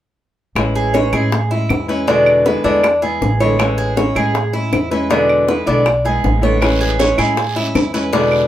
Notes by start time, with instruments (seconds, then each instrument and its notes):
0.55 upright bass A1, nylon-string guitar E3 G#3 C#4 E4, high bongo, claves
0.75 cuban tres G#4, high bongo
0.93 nylon-string guitar E3 G#3 C#4 E4, cuban tres C#5, high bongo
1.12 upright bass A2, nylon-string guitar G#3 C#4 E4, cuban tres G#4, high bongo, claves
1.32 muted nylon-string guitar stroke, high bongo
1.51 nylon-string guitar G#3 C#4 E4, cuban tres E4, high bongo
1.69 upright bass E2, high bongo, low bongo, claves
1.88 nylon-string guitar G#3 C#4 E4, cuban tres B4
2.08 nylon-string guitar B2 D3 G#3 B3 E4, cuban tres D4, high bongo
2.26 high bongo, claves
2.45 nylon-string guitar D3 G#3 B3 E4, cuban tres B4, high bongo
2.64 upright bass E2, nylon-string guitar D3 G#3 B3 E4, cuban tres D4, high bongo
2.84 muted nylon-string guitar stroke, high bongo, claves
3.02 nylon-string guitar G#3 B3 E4, cuban tres G#4, high bongo
3.21 upright bass A1, high bongo, low bongo
3.40 nylon-string guitar D3 G#3 B3 E4, cuban tres C#5
3.59 nylon-string guitar E3 G#3 C#4 E4, high bongo, claves
3.78 cuban tres G#4, high bongo
3.96 nylon-string guitar E3 G#3 C#4 E4, cuban tres C#5, high bongo
4.15 upright bass A2, nylon-string guitar G#3 C#4 E4, cuban tres G#4, high bongo, claves
4.34 muted nylon-string guitar stroke, high bongo
4.53 nylon-string guitar G#3 C#4 E4, cuban tres E4, high bongo
4.73 upright bass E2, high bongo, low bongo, claves
4.91 nylon-string guitar G#3 C#4 E4, cuban tres B4
5.10 nylon-string guitar B2 D3 G#3 B3 E4, cuban tres D4, high bongo
5.29 high bongo, claves
5.47 nylon-string guitar D3 G#3 B3 E4, cuban tres B4, high bongo
5.66 upright bass B1, nylon-string guitar D3 G#3 B3 E4, cuban tres D4, high bongo
5.86 muted nylon-string guitar stroke, high bongo, claves
6.05 nylon-string guitar G#3 B3 E4, cuban tres G#4, high bongo
6.24 upright bass A1, high bongo, low bongo
6.42 nylon-string guitar D3 G#3 B3 E4, cuban tres C#5
6.61 nylon-string guitar E3 G#3 C#4 E4, high bongo, long guiro, claves
6.81 cuban tres G#4, high bongo
6.99 nylon-string guitar E3 G#3 C#4 E4, cuban tres C#5, high bongo, short guiro
7.18 upright bass A2, nylon-string guitar G#3 C#4 E4, cuban tres G#4, high bongo, short guiro, claves
7.37 muted nylon-string guitar stroke, high bongo, long guiro
7.56 nylon-string guitar G#3 C#4 E4, cuban tres E4, high bongo
7.75 upright bass E2, high bongo, low bongo, short guiro, claves
7.94 nylon-string guitar G#3 C#4 E4, cuban tres B4, short guiro
8.12 nylon-string guitar B2 D3 G#3 B3 E4, cuban tres D4, high bongo, long guiro
8.32 high bongo, claves